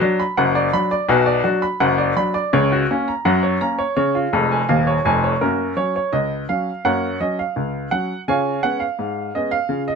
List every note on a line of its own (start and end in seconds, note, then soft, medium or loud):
0.01 0.21 F#3 medium
0.01 0.21 D4 medium
0.20 0.38 B5 medium
0.37 0.68 F#1 loud
0.37 0.68 F#2 medium
0.37 0.56 F#5 medium
0.55 0.74 D5 medium
0.73 0.93 F#3 medium
0.73 0.93 D4 medium
0.73 0.92 B5 medium
0.91 1.10 D5 medium
1.09 1.39 B1 medium
1.09 1.39 B2 loud
1.09 1.28 F#4 medium
1.26 1.45 D5 medium
1.44 1.64 F#3 medium
1.44 1.65 D4 medium
1.44 1.63 F#4 medium
1.62 1.81 B5 medium
1.80 2.11 F#1 medium
1.80 2.11 F#2 medium
1.80 1.99 F#5 medium
1.98 2.17 D5 medium
2.16 2.36 F#3 medium
2.16 2.37 D4 medium
2.16 2.36 B5 medium
2.34 2.53 D5 medium
2.53 2.84 C#2 medium
2.53 2.84 C#3 medium
2.53 2.72 C#5 medium
2.72 2.91 F#4 medium
2.90 3.10 A#3 medium
2.90 3.11 C#4 medium
3.08 3.26 A#5 medium
3.25 3.56 F#2 medium
3.25 3.56 F#3 medium
3.25 3.44 F#5 medium
3.43 3.62 C#5 medium
3.61 3.81 A#3 medium
3.61 3.81 C#4 medium
3.61 3.80 A#5 medium
3.79 3.95 C#5 medium
3.97 4.26 C#3 medium
3.97 4.16 C#5 medium
4.15 4.34 F4 medium
4.33 4.60 F1 medium
4.33 4.60 F2 medium
4.33 4.52 G#3 medium
4.52 4.70 G#5 medium
4.69 4.96 D#1 medium
4.69 4.96 D#2 medium
4.69 4.88 F5 medium
4.87 5.06 C#5 medium
5.05 5.32 F1 medium
5.05 5.32 F2 medium
5.05 5.24 G#5 medium
5.24 5.42 C#5 medium
5.41 5.72 F#2 medium
5.41 5.63 A#3 soft
5.41 5.75 C#4 medium
5.41 5.76 F#4 medium
5.41 5.75 A#4 medium
5.77 5.96 F#3 soft
5.77 5.97 C#4 soft
5.77 5.94 C#5 medium
5.96 6.13 C#5 medium
6.13 6.43 C#2 medium
6.13 6.41 D#5 medium
6.49 6.69 F#3 soft
6.49 6.69 C#4 soft
6.49 6.83 F5 medium
6.85 7.15 F#2 medium
6.85 7.05 A#3 soft
6.85 7.18 A#4 medium
6.85 7.18 C#5 medium
6.85 7.19 F#5 medium
7.20 7.40 F#3 soft
7.20 7.41 C#4 soft
7.20 7.38 D#5 medium
7.39 7.89 F5 medium
7.56 7.86 C#2 medium
7.91 8.11 F#3 soft
7.91 8.12 C#4 soft
7.91 8.20 F#5 medium
8.28 8.58 C#3 medium
8.28 8.49 F4 soft
8.28 8.61 C#5 medium
8.28 8.61 F5 medium
8.28 8.62 G#5 medium
8.63 8.83 G#3 soft
8.63 8.83 B3 soft
8.63 8.83 C#4 soft
8.63 8.81 F#5 medium
8.80 9.31 F5 medium
8.99 9.29 G#2 medium
9.35 9.54 G#3 soft
9.35 9.55 B3 soft
9.35 9.55 C#4 soft
9.35 9.52 D#5 medium
9.51 9.80 F5 medium
9.69 9.95 C#3 medium
9.69 9.90 F4 soft
9.88 9.95 D#5 medium